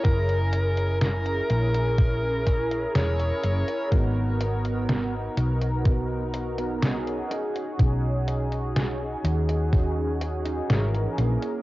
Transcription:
<<
  \new Staff \with { instrumentName = "Lead electric guitar" } { \time 4/4 \key b \major \tempo 4 = 62 ais'4 ais'2 cis''4 | r1 | r1 | }
  \new Staff \with { instrumentName = "Analog polysynth" } { \time 4/4 \key b \major <cis' e' gis' ais'>2. <cis' e' gis' ais'>4 | <b dis' fis' ais'>2. <cis' dis' fis' gis'>4 | <cis' dis' fis' gis'>2. <e cis' gis' ais'>4 | }
  \new Staff \with { instrumentName = "Clean electric guitar" } { \time 4/4 \key b \major r1 | <b fis' ais'>8 r8 <b fis' ais'>16 r8. <b fis' ais'>8 r16 <b fis' ais'>16 r8 <cis' dis' gis'>8~ | <cis' dis' gis'>8. r16 <cis' dis' gis'>16 r8. <cis' dis' gis'>8 r16 <cis' dis' gis'>16 r8 <ais cis' gis'>8 | }
  \new Staff \with { instrumentName = "Fingered electric bass" } { \clef bass \time 4/4 \key b \major fis,,4. ais,,4. e,,8 fis,,8 | gis,,4. b,,2 r8 | b,,4. dis,4. gis,,8 ais,,8 | }
  \new DrumStaff \with { instrumentName = "Drums" } \drummode { \time 4/4 <hh bd>16 hh16 hh16 hh16 <hh sn>16 hh16 hh16 hh16 <hh bd>8 <hh bd>16 hh16 <hh sn>16 hh16 hh16 hh16 | <hh bd>8 hh16 hh16 <hh sn>8 hh16 hh16 <hh bd>8 hh16 hh16 <hh sn>16 hh16 hh16 hh16 | <hh bd>8 hh16 hh16 <hh sn>8 hh16 hh16 <hh bd>8 hh16 hh16 <hh sn>16 hh16 hh16 hh16 | }
>>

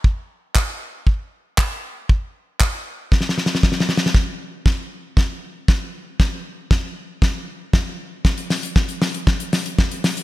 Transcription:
\new DrumStaff \with { instrumentName = "Drums" } \drummode { \time 4/4 \tempo 4 = 117 bd4 <hc bd>4 bd4 <hc bd>4 | bd4 <hc bd>4 \tuplet 3/2 { <bd sn>16 sn16 sn16 sn16 sn16 sn16 <bd sn>16 sn16 sn16 sn16 sn16 sn16 } | <bd sn>4 <bd sn>4 <bd sn>4 <bd sn>4 | <bd sn>4 <bd sn>4 <bd sn>4 <bd sn>4 |
<bd sn>16 hh16 <hho sn>16 hh16 <bd sn>16 hh16 <hho sn>16 hh16 <bd sn>16 hh16 <hho sn>16 hh16 <bd sn>16 hh16 <hho sn>16 hh16 | }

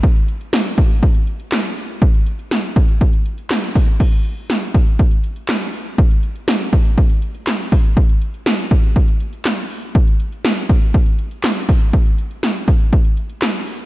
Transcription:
\new DrumStaff \with { instrumentName = "Drums" } \drummode { \time 4/4 \tempo 4 = 121 <hh bd>16 hh16 hh16 hh16 <hh sn>16 hh16 <hh bd>16 hh16 <hh bd>16 hh16 hh16 hh16 <hc hh sn>16 hh16 hho16 hh16 | <hh bd>16 hh16 hh16 hh16 <hh sn>16 hh16 <hh bd>16 hh16 <hh bd>16 hh16 hh16 hh16 <hc hh sn>16 hh16 <hho bd>16 hh16 | <cymc hh bd>16 hh16 hh16 hh16 <hh sn>16 hh16 <hh bd>16 hh16 <hh bd>16 hh16 hh16 hh16 <hc hh sn>16 hh16 hho16 hh16 | <hh bd>16 hh16 hh16 hh16 <hh sn>16 hh16 <hh bd>16 hh16 <hh bd>16 hh16 hh16 hh16 <hc hh sn>16 hh16 <hho bd>16 hh16 |
<hh bd>16 hh16 hh16 hh16 <hh sn>16 hh16 <hh bd>16 hh16 <hh bd>16 hh16 hh16 hh16 <hc hh sn>16 hh16 hho16 hh16 | <hh bd>16 hh16 hh16 hh16 <hh sn>16 hh16 <hh bd>16 hh16 <hh bd>16 hh16 hh16 hh16 <hc hh sn>16 hh16 <hho bd>16 hh16 | <hh bd>16 hh16 hh16 hh16 <hh sn>16 hh16 <hh bd>16 hh16 <hh bd>16 hh16 hh16 hh16 <hc hh sn>16 hh16 hho16 hh16 | }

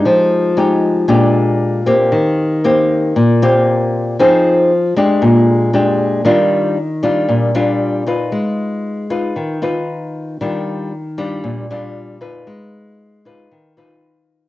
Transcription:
\new Staff \with { instrumentName = "Nylon-string guitar" } { \time 4/4 \key ees \major \tempo 4 = 116 << { <aes ees' g'>4 <aes ees' g'>4 <aes d' g'>4. <bes c' g'>8~ | <bes c' g'>4 <bes c' g'>4 r8 <bes c' g'>4. | <c' ees' aes'>4 r8 <aes d' g'>4. <aes d' g'>4 | <g d' f'>4 r8 <g d' f'>4 <g d' f'>4 <ees' f' ces''>8~ |
<ees' f' ces''>4. <ees' f' ces''>4 <ees' f' ces''>4. | <g d' f'>4 r8 <g d' f'>4 <g d' f'>4 <ees' f' ces''>8~ | <ees' f' ces''>4. <ees' f' ces''>4 <ees' f' ces''>4. | } \\ { f2 bes,2 | ees2 bes,2 | f2 bes,2 | ees2 bes,2 |
aes2 ees2 | ees2 bes,2 | aes2 ees2 | } >> }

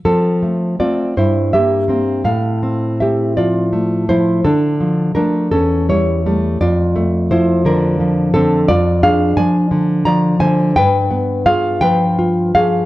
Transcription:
\new Staff \with { instrumentName = "Nylon-string guitar" } { \time 6/8 \key f \major \tempo 4. = 56 << { <c' a'>4 <f' d''>8 <e' c''>8 <g' e''>4 | <a' f''>4 <g' e''>8 <f' d''>4 <e' c''>8 | <d' a'>4 <d' bes'>8 <cis' a'>8 <e' cis''>4 | <f' d''>4 <e' c''>8 <d' bes'>4 <c' a'>8 |
\key g \phrygian <f' d''>8 <aes' f''>8 <d'' aes''>4 <d'' bes''>8 <c'' aes''>8 | <b' g''>4 <aes' f''>8 <b' g''>4 <aes' f''>8 | } \\ { f8 a8 <a c'>8 g,8 bes8 <bes c'>8 | a,8 c'8 a8 f8 a8 f8 | d8 f8 <f a>8 e,8 g8 <g a>8 | f,8 a8 f8 d8 f8 d8 |
f,8 d'8 f8 d8 f8 d8 | g,8 b8 f'8 f8 f'8 f8 | } >> }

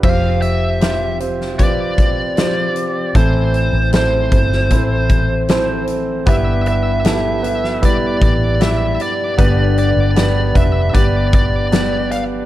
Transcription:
<<
  \new Staff \with { instrumentName = "Lead electric guitar" } { \time 4/4 \key f \lydian \tempo 4 = 77 f''8 e''4 r8 d''2 | c''4 c''2~ c''8 r8 | e''8 e''4. d''8 d''8 e''8 d''8~ | d''8 d''4 e''8 d''8 d''4 f''8 | }
  \new Staff \with { instrumentName = "Grand piano" } { \time 4/4 \key f \lydian <c' f' g' c''>4 <c' f' g' c''>8 <c' f' g' c''>8 <c' f' g' b'>4 <c' f' g' c''>4 | <c' e' a' c''>4 <c' e' a' c''>8 <c' e' a' c''>8 <c' e' a' c''>4 <c' e' a' c''>4 | <b e' g' b'>4 <b e' g' a'>8 <b e' g' b'>8 <b e' g' b'>4 <b e' g' d''>4 | <b d' g' b'>4 <b d' g' b'>8 <b d' g' b'>8 <b d' g' b'>4 <b d' g' b'>4 | }
  \new Staff \with { instrumentName = "Grand piano" } { \clef bass \time 4/4 \key f \lydian c4. r2 r8 | <a, e>4. r2 r8 | <g, g>4. r2 r8 | <g, d>4. r2 r8 | }
  \new Staff \with { instrumentName = "Steel-string acoustic guitar" } { \time 4/4 \key f \lydian <f c' f' g'>2 <f c' f' g'>4 <f c' f' g'>4 | <a, e c' e' a'>4. <c' e' a'>8 <e c' e' a'>4 <e c' e' a'>4 | <g b e' g'>2 <g b e' g'>4 <g b e' g'>4 | <g, d g b d' g'>4. <g b d' g'>8 <g b d' g'>4 <g b d' g'>4 | }
  \new Staff \with { instrumentName = "Fingered electric bass" } { \clef bass \time 4/4 \key f \lydian f,,2~ f,,8 g,,4 r8 | a,,8. a,,8. g,,8 a,,2 | g,,2~ g,,8 a,,4 r8 | g,,8. g,,8. f,,8 g,,2 | }
  \new DrumStaff \with { instrumentName = "Drums" } \drummode { \time 4/4 <cymc bd>8 hh8 <hh sn>8 hh16 sn16 <hh bd>8 <hh bd>8 <hh sn>8 hh8 | <hh bd>8 hh8 <hh sn>8 <hh bd>16 sn16 <hh bd>8 <hh bd>8 <hh sn>8 hh8 | <hh bd>8 hh8 <hh sn>8 hh16 sn16 <hh bd>8 <hh bd>8 <hh sn>8 hh8 | <hh bd>8 hh8 <hh sn>8 <hh bd>8 <hh bd>8 <hh bd>8 <hh sn>8 hh8 | }
>>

